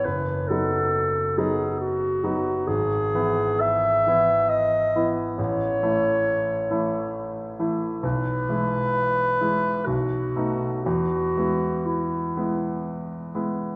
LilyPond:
<<
  \new Staff \with { instrumentName = "Clarinet" } { \time 3/4 \key e \major \tempo 4 = 67 b'8 a'4 gis'8 fis'4 | gis'4 e''4 dis''8 r8 | cis''2~ cis''8 r8 | b'2 fis'4 |
fis'4 e'4 r4 | }
  \new Staff \with { instrumentName = "Grand piano" } { \time 3/4 \key e \major fis,,8 <fis b dis'>4 <fis b dis'>4 <fis b dis'>8 | gis,,8 <e b e'>4 <e b e'>4 <e b e'>8 | a,,8 <e a e'>4 <e a e'>4 <e a e'>8 | b,,8 <e gis e'>4 <e gis e'>8 b,,8 <a b dis'>8 |
e,8 <gis b e'>4 <gis b e'>4 <gis b e'>8 | }
>>